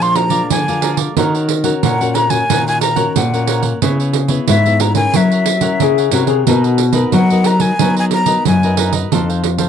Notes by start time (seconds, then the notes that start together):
Already playing: A#2 F3 G#3 D4 F4
0.01 A#4 D5 F5 C6, pandeiro
0.16 A#5, muted cavaquinho stroke, pandeiro
0.30 G#3 D4 F4 A#4 D5 F5, pandeiro
0.50 D3 F3 G#5, pandeiro
0.68 G#3 D4 F4 A#4 D5 F5, pandeiro
0.81 G#4 A#4 D5 F5, pandeiro
0.97 A#4 D5 F5, pandeiro
1.17 D#3 C#4 D#4 F#4 A#4 C#5 F#5, pandeiro
1.35 A#4 C#5 F#5, pandeiro
1.49 pandeiro
1.64 C#4 F#4 A#4 C#5 F#5, pandeiro
1.83 A#2 D#4 A#4 C#5 F#5, pandeiro
2.01 C#4 F#4 A#4 C#5 F#5, pandeiro
2.15 D#4 A#4 C#5 F#5 A#5, pandeiro
2.30 C#4 F#4 A#4 G#5, pandeiro
2.49 A#2 D#3 C#4 D#4 F#4 A#4 C#5 F#5, pandeiro
2.68 A#4 C#5 F#5 G#5, pandeiro
2.81 A#5, muted cavaquinho stroke, pandeiro
2.96 C#4 F#4 A#4 C#5 F#5, pandeiro
3.16 A#2 F#5, pandeiro
3.33 C#4 F#4 A#4 C#5 F#5, pandeiro
3.47 D#4 A#4 C#5 F#5, pandeiro
3.62 A#4 C#5 F#5, pandeiro
3.82 C#3 B3 E4 G#4 B4 C#5 E5, pandeiro
4.00 B4 C#5 E5, pandeiro
4.13 muted cavaquinho stroke, pandeiro
4.28 B3 E4 G#4 B4 C#5 E5, pandeiro
4.48 G#2 E4 B4 C#5 E5, pandeiro
4.66 B3 E4 G#4 B4 C#5 E5, pandeiro
4.79 E4 B4 C#5 E5 A#5, pandeiro
4.94 C#4 E4 A#4 G#5, pandeiro
5.14 F#3 E4 A#4 C#5 E5 F#5, pandeiro
5.31 A#4 C#5 F#5, pandeiro
5.46 muted cavaquinho stroke, pandeiro
5.61 C#4 E4 A#4 C#5 F#5, pandeiro
5.80 C#3 G#4, pandeiro
5.98 A#4 C#5 F#5, pandeiro
6.11 C3 C#4 E4 F#4 A#4 C#5 F#5, pandeiro
6.27 G#4 A#4 C#5 F#5, pandeiro
6.47 B2 B3 D#4 F#4 A#4 B4 D#5, pandeiro
6.64 A#4 B4 D#5, pandeiro
6.78 pandeiro
6.93 D#4 F#4 A#4 B4 D#5, pandeiro
7.12 F#3 D#4 A#4 B4 D#5 F#5, pandeiro
7.30 D#4 F#4 A#4 B4 D#5, pandeiro
7.44 D#4 A#4 B4 D#5 A#5, pandeiro
7.59 D#4 F#4 A#4 G#5, pandeiro
7.79 F#3 B3 D#4 F#4 A#4 B4 D#5, pandeiro
7.97 A#4 B4 D#5 G#5, pandeiro
8.11 A#5, muted cavaquinho stroke, pandeiro
8.26 D#4 F#4 A#4 B4 D#5, pandeiro
8.45 F#2 F#3 G#5, pandeiro
8.63 D#4 F#4 A#4 B4 D#5, pandeiro
8.77 D#4 A#4 B4 D#5, pandeiro
8.93 A#4 B4 D#5, pandeiro
9.11 F2 F3 D#4 A4 C5 F5, pandeiro
9.29 A4 C5 F5, pandeiro
9.44 muted cavaquinho stroke, pandeiro
9.58 D#4 A4 C5 F5, pandeiro